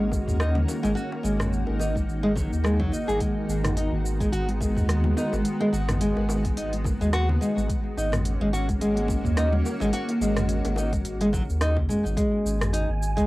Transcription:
Already playing: sub bass G#1, ambient pad D#3 A#3 C#4 F#4, nylon-string guitar G#3
0.12 kick, high bongo, cabasa
0.28 sub bass D#2, mid tom, cabasa
0.40 nylon-string guitar D#4, cross-stick, cabasa
0.55 high conga, low conga
0.69 high bongo, cabasa
0.83 sub bass G#1, nylon-string guitar G#3, high bongo, high conga, cabasa
0.95 ambient pad D#4, nylon-string guitar F#4, cabasa
1.12 high bongo
1.23 sub bass G#1, nylon-string guitar G#3, cabasa
1.40 cross-stick, mid tom, low conga, cabasa
1.53 cabasa
1.67 sub bass G#1, high bongo
1.79 nylon-string guitar D#4, high bongo, cabasa
1.95 kick, high conga, cabasa
2.08 sub bass G#1, cabasa
2.23 nylon-string guitar G#3, high conga
2.35 nylon-string guitar F#3, kick, high bongo, low conga, cabasa
2.52 sub bass D#2, cabasa
2.64 nylon-string guitar G#3, cross-stick, cabasa
2.80 nylon-string guitar F#3, kick, low conga
2.92 nylon-string guitar D#4, cabasa
3.08 sub bass G#1, nylon-string guitar G#4, high conga, cabasa
3.20 nylon-string guitar G#3, ambient pad G#3 B3, kick, open hi-hat, cabasa
3.49 sub bass G#1, cabasa
3.64 cross-stick, mid tom, open hi-hat, low conga, cabasa
3.77 nylon-string guitar D#4, open hi-hat, cabasa
3.92 sub bass G#1
4.06 cabasa
4.20 nylon-string guitar G#3, kick, open hi-hat, high conga, cabasa
4.32 sub bass G#1, nylon-string guitar F#4, open hi-hat, cabasa
4.48 open hi-hat, high conga
4.60 nylon-string guitar G#3, kick, high bongo, cabasa
4.76 sub bass D#2, mid tom, cabasa
4.89 cross-stick, open hi-hat, cabasa
5.04 high conga, low conga
5.17 nylon-string guitar D#4, high bongo, cabasa
5.33 sub bass G#1, high bongo, high conga, cabasa
5.45 open hi-hat, cabasa
5.61 nylon-string guitar G#3, high bongo
5.73 sub bass G#1, nylon-string guitar F#4, cabasa
5.88 cross-stick, mid tom, open hi-hat, low conga, cabasa
6.01 nylon-string guitar G#3, open hi-hat, cabasa
6.17 sub bass G#1, high bongo
6.29 high bongo, cabasa
6.45 kick, open hi-hat, high conga, cabasa
6.57 sub bass G#1, nylon-string guitar D#4, open hi-hat, cabasa
6.73 open hi-hat, high conga
6.84 kick, high bongo, low conga, cabasa
7.01 sub bass D#2, nylon-string guitar G#3, cabasa
7.13 nylon-string guitar F#4, cross-stick, open hi-hat, cabasa
7.29 low conga
7.41 nylon-string guitar G#3, cabasa
7.57 sub bass G#1, high conga, cabasa
7.69 ambient pad A#3 C#4 F#4, kick, open hi-hat, cabasa
7.97 sub bass G#1, nylon-string guitar D#4, cabasa
8.12 cross-stick, mid tom, open hi-hat, low conga, cabasa
8.25 open hi-hat, cabasa
8.41 sub bass G#1, nylon-string guitar G#3
8.53 nylon-string guitar F#4, cabasa
8.69 kick, open hi-hat, high conga, cabasa
8.81 sub bass G#1, nylon-string guitar G#3, open hi-hat, cabasa
8.97 open hi-hat, high conga
9.08 kick, high bongo, cabasa
9.25 sub bass D#2, mid tom, cabasa
9.37 nylon-string guitar D#4, cross-stick, open hi-hat, cabasa
9.52 high conga, low conga
9.66 high bongo, cabasa
9.80 sub bass G#1, nylon-string guitar G#3, high bongo, high conga, cabasa
9.93 nylon-string guitar F#4, open hi-hat, cabasa
10.09 open hi-hat, high bongo
10.21 sub bass G#1, nylon-string guitar G#3, cabasa
10.37 cross-stick, mid tom, open hi-hat, low conga, cabasa
10.49 open hi-hat, cabasa
10.65 sub bass G#1, open hi-hat, high bongo
10.76 nylon-string guitar D#4, high bongo, cabasa
10.93 kick, open hi-hat, high bongo, high conga, cabasa
11.05 sub bass G#1, open hi-hat, cabasa
11.21 nylon-string guitar G#3, open hi-hat, high conga
11.33 nylon-string guitar F#3, kick, high bongo, low conga, cabasa
11.49 sub bass D#2, cabasa
11.61 nylon-string guitar D#4, cross-stick, open hi-hat, cabasa
11.77 kick, low conga
11.89 nylon-string guitar G#3, mid tom, cabasa
12.05 sub bass G#1, high conga, cabasa
12.17 nylon-string guitar G#3, synth texture G#5, kick, open hi-hat, cabasa
12.45 sub bass G#1, cabasa
12.61 cross-stick, mid tom, open hi-hat, cabasa
12.73 nylon-string guitar D#4, open hi-hat, cabasa
12.89 sub bass G#1
13.03 cabasa
13.17 nylon-string guitar G#3, kick, open hi-hat, cabasa

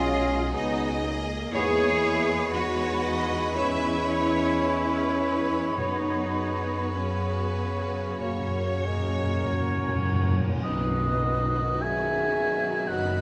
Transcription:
Already playing: double bass section B1, timpani B2, bassoon F#3, viola section G#3, french horn section C#4, cello section F4, violin section G#4 D#5, oboe D#5, flute G#5
0.02 viola section G#4
0.52 double bass section C#2, viola section B3, french horn section B3, cello section D#4, violin section F#4 D#5
1.03 viola section A#3, violin section G#4
1.52 double bass section E2, trombone section G#2 B3, bassoon G#3, french horn section E4, cello section G#4, violin section B4 C#5, oboe C#5, viola section C#5, trumpet section C#5, flute B5
2.53 viola section G#3 B4, french horn section D#4, cello section F#4, violin section C#5
3.03 violin section D#5
3.55 trombone section G#2 B3, viola section C#4, french horn section C#4, cello section E4, trumpet section C#5, violin section E5
4.09 violin section C#5
4.62 viola section C#4 G#4, violin section B4 C#5
5.18 violin section B4
5.77 double bass section F#2, timpani F#2, trombone section F#2 B3, bassoon F#3, french horn section B3, viola section B3 G#4, cello section D#4, violin section F#4 B4, trumpet section C#5
6.96 bassoon C#3, french horn section F#3, cello section C#4
8.19 double bass section F#2, timpani F#2, trombone section F#2 A#3, viola section A#3 F#4, violin section C#5, oboe C#5, trumpet section C#5
8.30 timpani F#2
8.39 timpani F#2
8.48 timpani F#2
8.58 timpani F#2
8.68 timpani F#2
8.77 timpani F#2
8.85 timpani F#2, bassoon G#3, french horn section C#4, flute A#4, oboe C#5
8.97 timpani F#2
9.06 timpani F#2
9.15 timpani F#2
9.24 timpani F#2
9.34 timpani F#2
9.43 timpani F#2
9.47 timpani F#2, bassoon F#3
9.60 timpani F#2
9.69 timpani F#2
9.77 timpani F#2
9.86 timpani F#2
9.96 timpani F#2
10.04 timpani F#2
10.13 timpani F#2
10.21 timpani F#2
10.30 timpani F#2
10.39 timpani F#2
10.47 timpani F#2
10.55 timpani F#2
10.63 double bass section B1, cello section B2, trombone section B2 D#3, viola section D#3 F#3, violin section B3 F#4, french horn section D#4, flute B4, oboe D#5, tam-tam
10.91 violin section B3
11.21 violin section B3
11.52 violin section B3
11.82 violin section B3, french horn section G#4, flute E5, oboe G#5
12.09 violin section B3
12.36 violin section B3
12.62 violin section B3
12.88 double bass section F#1, cello section F#2, violin section B3 B5, french horn section F#4, flute D#5, oboe F#5
13.14 violin section B3

